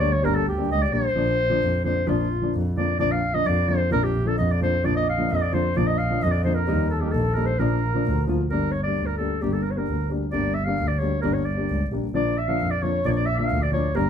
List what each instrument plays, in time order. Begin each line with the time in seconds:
Already playing: accordion C#5
0.00 upright piano G3 A#3 D4, clarinet D5
0.12 accordion C#5, clarinet C#5
0.22 double bass G1, upright piano G3 A#3 D4, accordion A#4, clarinet A#4
0.36 clarinet A4, accordion A4
0.47 double bass D2, accordion G4, clarinet G4
0.58 upright piano G3 A#3 D4
0.70 double bass C#2, clarinet D#5
0.82 clarinet D5
0.92 double bass A#1, upright piano G3 A#3 D4, clarinet C5
1.16 double bass A#1, upright piano F3 A#3 D4
1.50 upright piano F3 A#3 D4
1.62 double bass F2
1.84 upright piano F3 A#3 D4, clarinet C5
2.07 double bass A#1, upright piano F3 A#3 D4, clarinet F4
2.41 upright piano F3 A#3 D4
2.55 double bass F2
2.77 upright piano F3 A#3 D4, clarinet D5
2.99 double bass A#1, upright piano F3 A#3 D4, clarinet D5
3.12 clarinet F5
3.34 upright piano F3 A#3 D4, clarinet D#5
3.46 double bass F2, clarinet D5
3.68 upright piano F3 A#3 D4, clarinet C5
3.91 double bass A#1, upright piano F3 A#3 D4, clarinet A#4
4.04 clarinet G4
4.25 upright piano F3 A#3 D4, clarinet A4
4.38 double bass F2, clarinet D#5
4.52 clarinet D5
4.61 upright piano F3 A#3 D4, clarinet C5
4.84 double bass A#1, upright piano F3 A#3 D4, accordion D5, clarinet D5
4.94 accordion D#5, clarinet D#5
5.01 accordion D5
5.08 accordion D#5, clarinet F5
5.18 upright piano F3 A#3 D4
5.28 double bass F2, accordion D#5
5.32 clarinet D#5
5.43 clarinet D5
5.52 upright piano F3 A#3 D4, accordion C5, clarinet C5
5.76 double bass A#1, upright piano F3 A#3 D4, accordion D5, clarinet D5
5.87 clarinet D#5, accordion D#5
5.98 clarinet F5
6.10 upright piano F3 A#3 D4
6.22 double bass F2, clarinet D#5, accordion D#5
6.32 clarinet D5
6.44 upright piano F3 A#3 D4, clarinet C5
6.55 clarinet A#4, accordion A#4
6.67 double bass D#2, upright piano G3 A#3 D#4
6.90 clarinet A4, accordion A4
7.01 upright piano G3 A#3 D#4, clarinet G4
7.06 accordion A#4
7.11 double bass A#1, clarinet A4, accordion A4
7.34 upright piano G3 A#3 D#4, clarinet A#4
7.46 clarinet C5
7.59 double bass A#1, upright piano F3 A#3 D4, clarinet A#4, accordion A#4
7.94 upright piano F3 A#3 D4
8.06 double bass D2
8.27 upright piano F3 A#3 F4
8.50 double bass G1, upright piano G3 A#3 D4, clarinet A#4
8.72 clarinet C#5
8.83 upright piano G3 A#3, clarinet D5
8.87 upright piano D4
8.97 double bass D2
9.06 clarinet A#4
9.17 upright piano G3 A#3 D4, clarinet A4
9.42 double bass G1, upright piano G3 A#3 D4, clarinet G4
9.53 clarinet A4
9.63 clarinet A#4
9.71 clarinet C#5
9.75 upright piano G3 A#3 D4, clarinet A#4
9.87 double bass D2
10.09 upright piano G3 A#3 D4
10.31 double bass G1, upright piano G3 A#3 D4, clarinet D5
10.54 clarinet E5
10.65 upright piano G3 A#3 D4, clarinet F5
10.79 double bass D2
10.88 clarinet D5
10.99 upright piano G3 A#3 D4, clarinet C#5
11.21 double bass G1, upright piano G3 A#3 D4, clarinet A#4
11.33 clarinet C#5
11.45 clarinet D5
11.57 upright piano G3 A#3 D4
11.70 double bass C#2
11.92 double bass A#1, upright piano G3 A#3 D4
12.14 double bass A#1, upright piano F3 A#3 D4, accordion D5, clarinet D5
12.38 accordion E5, clarinet E5
12.48 upright piano F3 A#3 D4, clarinet F5
12.60 double bass F2
12.71 clarinet D5, accordion D5
12.82 upright piano F3 A#3 D4, clarinet C#5, accordion C#5
13.05 double bass A#1, upright piano F3 A#3 D4, accordion D5, clarinet D5
13.09 clarinet C#5
13.16 clarinet D5, accordion D5
13.26 clarinet E5, accordion E5
13.34 accordion D5
13.38 upright piano F3 A#3 D4, accordion E5, clarinet F5
13.50 double bass D2
13.61 accordion D5, clarinet D5
13.72 upright piano F3 A#3 D4, clarinet C#5
13.95 double bass G1, upright piano G3 A#3 D4, clarinet A#4, accordion A#4